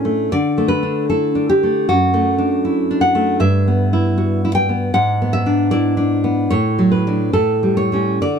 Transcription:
0, 0, Header, 1, 2, 480
1, 0, Start_track
1, 0, Key_signature, 2, "major"
1, 0, Tempo, 788436
1, 183, Time_signature, 2, 2, 24, 8
1, 1144, Tempo, 770218
1, 4024, Tempo, 824176
1, 4504, Tempo, 888889
1, 5080, End_track
2, 0, Start_track
2, 0, Title_t, "Nylon-string guitar"
2, 0, Program_c, 0, 24
2, 0, Note_on_c, 0, 45, 44
2, 0, Note_on_c, 0, 61, 36
2, 0, Note_on_c, 0, 62, 30
2, 29, Note_on_c, 0, 57, 37
2, 168, Note_off_c, 0, 45, 0
2, 181, Note_off_c, 0, 62, 0
2, 185, Note_off_c, 0, 61, 0
2, 186, Note_off_c, 0, 57, 0
2, 195, Note_on_c, 0, 74, 67
2, 196, Note_on_c, 0, 50, 46
2, 351, Note_on_c, 0, 57, 38
2, 414, Note_off_c, 0, 74, 0
2, 416, Note_on_c, 0, 71, 65
2, 504, Note_on_c, 0, 62, 39
2, 651, Note_off_c, 0, 71, 0
2, 667, Note_on_c, 0, 64, 34
2, 667, Note_on_c, 0, 69, 55
2, 816, Note_off_c, 0, 62, 0
2, 823, Note_on_c, 0, 62, 42
2, 898, Note_off_c, 0, 69, 0
2, 910, Note_on_c, 0, 67, 66
2, 987, Note_off_c, 0, 57, 0
2, 994, Note_on_c, 0, 57, 39
2, 1126, Note_off_c, 0, 50, 0
2, 1137, Note_off_c, 0, 67, 0
2, 1143, Note_off_c, 0, 62, 0
2, 1145, Note_off_c, 0, 64, 0
2, 1148, Note_off_c, 0, 57, 0
2, 1149, Note_on_c, 0, 66, 72
2, 1153, Note_on_c, 0, 42, 49
2, 1304, Note_on_c, 0, 57, 41
2, 1459, Note_on_c, 0, 62, 41
2, 1622, Note_on_c, 0, 64, 34
2, 1777, Note_off_c, 0, 62, 0
2, 1784, Note_on_c, 0, 62, 43
2, 1831, Note_off_c, 0, 66, 0
2, 1849, Note_on_c, 0, 78, 74
2, 1928, Note_off_c, 0, 57, 0
2, 1935, Note_on_c, 0, 57, 42
2, 2072, Note_off_c, 0, 42, 0
2, 2080, Note_off_c, 0, 78, 0
2, 2090, Note_on_c, 0, 43, 51
2, 2093, Note_off_c, 0, 57, 0
2, 2093, Note_on_c, 0, 76, 76
2, 2095, Note_off_c, 0, 64, 0
2, 2097, Note_off_c, 0, 62, 0
2, 2263, Note_on_c, 0, 59, 41
2, 2422, Note_on_c, 0, 64, 40
2, 2575, Note_on_c, 0, 66, 34
2, 2737, Note_off_c, 0, 64, 0
2, 2744, Note_on_c, 0, 64, 41
2, 2789, Note_off_c, 0, 76, 0
2, 2805, Note_off_c, 0, 64, 0
2, 2807, Note_on_c, 0, 79, 80
2, 2888, Note_off_c, 0, 59, 0
2, 2896, Note_on_c, 0, 59, 37
2, 3032, Note_off_c, 0, 43, 0
2, 3044, Note_off_c, 0, 79, 0
2, 3051, Note_on_c, 0, 78, 78
2, 3053, Note_on_c, 0, 44, 50
2, 3058, Note_off_c, 0, 59, 0
2, 3060, Note_off_c, 0, 66, 0
2, 3224, Note_on_c, 0, 59, 40
2, 3284, Note_off_c, 0, 78, 0
2, 3295, Note_on_c, 0, 76, 75
2, 3377, Note_on_c, 0, 62, 40
2, 3525, Note_off_c, 0, 76, 0
2, 3532, Note_on_c, 0, 74, 64
2, 3536, Note_on_c, 0, 64, 37
2, 3686, Note_off_c, 0, 62, 0
2, 3694, Note_on_c, 0, 62, 41
2, 3767, Note_off_c, 0, 74, 0
2, 3854, Note_off_c, 0, 59, 0
2, 3861, Note_on_c, 0, 59, 36
2, 3999, Note_off_c, 0, 44, 0
2, 4025, Note_off_c, 0, 62, 0
2, 4026, Note_off_c, 0, 59, 0
2, 4026, Note_off_c, 0, 64, 0
2, 4027, Note_on_c, 0, 73, 77
2, 4032, Note_on_c, 0, 45, 48
2, 4190, Note_on_c, 0, 54, 38
2, 4254, Note_off_c, 0, 73, 0
2, 4266, Note_on_c, 0, 71, 54
2, 4351, Note_off_c, 0, 54, 0
2, 4355, Note_on_c, 0, 62, 36
2, 4358, Note_on_c, 0, 54, 36
2, 4495, Note_off_c, 0, 45, 0
2, 4496, Note_off_c, 0, 62, 0
2, 4498, Note_off_c, 0, 54, 0
2, 4498, Note_off_c, 0, 71, 0
2, 4509, Note_on_c, 0, 45, 48
2, 4509, Note_on_c, 0, 69, 60
2, 4668, Note_on_c, 0, 55, 36
2, 4730, Note_off_c, 0, 69, 0
2, 4743, Note_on_c, 0, 73, 63
2, 4819, Note_off_c, 0, 55, 0
2, 4826, Note_on_c, 0, 55, 35
2, 4833, Note_on_c, 0, 61, 36
2, 4970, Note_off_c, 0, 45, 0
2, 4970, Note_off_c, 0, 55, 0
2, 4974, Note_off_c, 0, 61, 0
2, 4975, Note_off_c, 0, 73, 0
2, 4986, Note_on_c, 0, 74, 62
2, 4990, Note_on_c, 0, 50, 43
2, 5080, Note_off_c, 0, 50, 0
2, 5080, Note_off_c, 0, 74, 0
2, 5080, End_track
0, 0, End_of_file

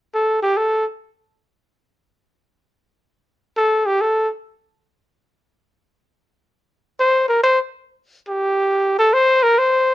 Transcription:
0, 0, Header, 1, 2, 480
1, 0, Start_track
1, 0, Tempo, 500000
1, 9547, End_track
2, 0, Start_track
2, 0, Title_t, "Trumpet"
2, 0, Program_c, 0, 56
2, 136, Note_on_c, 0, 69, 68
2, 386, Note_off_c, 0, 69, 0
2, 406, Note_on_c, 0, 67, 74
2, 547, Note_on_c, 0, 69, 69
2, 561, Note_off_c, 0, 67, 0
2, 816, Note_off_c, 0, 69, 0
2, 3429, Note_on_c, 0, 69, 78
2, 3705, Note_on_c, 0, 67, 78
2, 3719, Note_off_c, 0, 69, 0
2, 3852, Note_on_c, 0, 69, 71
2, 3867, Note_off_c, 0, 67, 0
2, 4115, Note_off_c, 0, 69, 0
2, 6718, Note_on_c, 0, 72, 80
2, 6967, Note_off_c, 0, 72, 0
2, 6993, Note_on_c, 0, 70, 75
2, 7112, Note_off_c, 0, 70, 0
2, 7135, Note_on_c, 0, 72, 77
2, 7294, Note_off_c, 0, 72, 0
2, 7951, Note_on_c, 0, 67, 72
2, 8591, Note_off_c, 0, 67, 0
2, 8626, Note_on_c, 0, 69, 84
2, 8769, Note_on_c, 0, 72, 91
2, 8784, Note_off_c, 0, 69, 0
2, 9053, Note_on_c, 0, 70, 87
2, 9068, Note_off_c, 0, 72, 0
2, 9200, Note_on_c, 0, 72, 78
2, 9215, Note_off_c, 0, 70, 0
2, 9547, Note_off_c, 0, 72, 0
2, 9547, End_track
0, 0, End_of_file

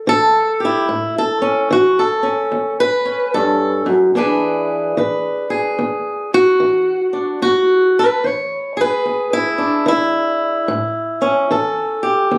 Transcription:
0, 0, Header, 1, 2, 480
1, 0, Start_track
1, 0, Key_signature, 3, "major"
1, 0, Tempo, 816327
1, 522, Time_signature, 4, 2, 24, 8
1, 7281, End_track
2, 0, Start_track
2, 0, Title_t, "Steel-string acoustic guitar"
2, 0, Program_c, 0, 25
2, 42, Note_on_c, 0, 52, 67
2, 52, Note_on_c, 0, 69, 112
2, 354, Note_on_c, 0, 67, 50
2, 367, Note_off_c, 0, 69, 0
2, 381, Note_on_c, 0, 64, 76
2, 487, Note_off_c, 0, 52, 0
2, 503, Note_off_c, 0, 67, 0
2, 521, Note_on_c, 0, 45, 70
2, 691, Note_off_c, 0, 64, 0
2, 696, Note_on_c, 0, 69, 84
2, 833, Note_on_c, 0, 61, 46
2, 967, Note_off_c, 0, 45, 0
2, 1003, Note_on_c, 0, 52, 67
2, 1009, Note_off_c, 0, 69, 0
2, 1014, Note_on_c, 0, 66, 85
2, 1168, Note_off_c, 0, 66, 0
2, 1171, Note_on_c, 0, 69, 85
2, 1303, Note_off_c, 0, 61, 0
2, 1310, Note_on_c, 0, 61, 51
2, 1447, Note_off_c, 0, 52, 0
2, 1479, Note_on_c, 0, 40, 69
2, 1645, Note_off_c, 0, 69, 0
2, 1647, Note_on_c, 0, 71, 112
2, 1789, Note_off_c, 0, 61, 0
2, 1796, Note_on_c, 0, 61, 43
2, 1926, Note_off_c, 0, 40, 0
2, 1963, Note_off_c, 0, 71, 0
2, 1965, Note_on_c, 0, 69, 86
2, 1968, Note_on_c, 0, 43, 66
2, 2267, Note_off_c, 0, 43, 0
2, 2270, Note_on_c, 0, 42, 67
2, 2271, Note_off_c, 0, 69, 0
2, 2424, Note_off_c, 0, 61, 0
2, 2438, Note_off_c, 0, 42, 0
2, 2441, Note_on_c, 0, 40, 68
2, 2446, Note_on_c, 0, 52, 50
2, 2451, Note_on_c, 0, 62, 49
2, 2454, Note_on_c, 0, 68, 49
2, 2458, Note_on_c, 0, 71, 50
2, 2887, Note_off_c, 0, 40, 0
2, 2921, Note_off_c, 0, 52, 0
2, 2923, Note_on_c, 0, 52, 63
2, 2926, Note_off_c, 0, 71, 0
2, 2929, Note_on_c, 0, 71, 47
2, 3232, Note_off_c, 0, 68, 0
2, 3235, Note_on_c, 0, 68, 51
2, 3368, Note_off_c, 0, 52, 0
2, 3402, Note_on_c, 0, 40, 65
2, 3724, Note_off_c, 0, 68, 0
2, 3729, Note_on_c, 0, 66, 101
2, 3847, Note_off_c, 0, 40, 0
2, 3880, Note_on_c, 0, 52, 66
2, 4185, Note_off_c, 0, 62, 0
2, 4192, Note_on_c, 0, 62, 46
2, 4326, Note_off_c, 0, 52, 0
2, 4342, Note_off_c, 0, 62, 0
2, 4344, Note_off_c, 0, 71, 0
2, 4356, Note_off_c, 0, 66, 0
2, 4362, Note_on_c, 0, 40, 74
2, 4365, Note_on_c, 0, 66, 97
2, 4682, Note_off_c, 0, 66, 0
2, 4699, Note_on_c, 0, 71, 88
2, 4808, Note_off_c, 0, 40, 0
2, 4845, Note_on_c, 0, 52, 65
2, 4860, Note_off_c, 0, 71, 0
2, 4860, Note_on_c, 0, 73, 83
2, 5156, Note_on_c, 0, 68, 57
2, 5170, Note_off_c, 0, 73, 0
2, 5179, Note_on_c, 0, 71, 93
2, 5289, Note_off_c, 0, 52, 0
2, 5325, Note_on_c, 0, 40, 60
2, 5485, Note_off_c, 0, 71, 0
2, 5487, Note_on_c, 0, 64, 105
2, 5634, Note_on_c, 0, 62, 44
2, 5768, Note_off_c, 0, 40, 0
2, 5797, Note_on_c, 0, 52, 67
2, 5804, Note_off_c, 0, 64, 0
2, 5811, Note_on_c, 0, 64, 90
2, 6244, Note_off_c, 0, 52, 0
2, 6263, Note_off_c, 0, 62, 0
2, 6263, Note_off_c, 0, 68, 0
2, 6281, Note_on_c, 0, 45, 74
2, 6595, Note_on_c, 0, 61, 50
2, 6726, Note_off_c, 0, 45, 0
2, 6765, Note_off_c, 0, 64, 0
2, 6765, Note_on_c, 0, 52, 61
2, 6770, Note_on_c, 0, 69, 50
2, 7073, Note_on_c, 0, 67, 54
2, 7208, Note_off_c, 0, 52, 0
2, 7240, Note_on_c, 0, 40, 68
2, 7281, Note_off_c, 0, 40, 0
2, 7281, Note_off_c, 0, 61, 0
2, 7281, Note_off_c, 0, 67, 0
2, 7281, Note_off_c, 0, 69, 0
2, 7281, End_track
0, 0, End_of_file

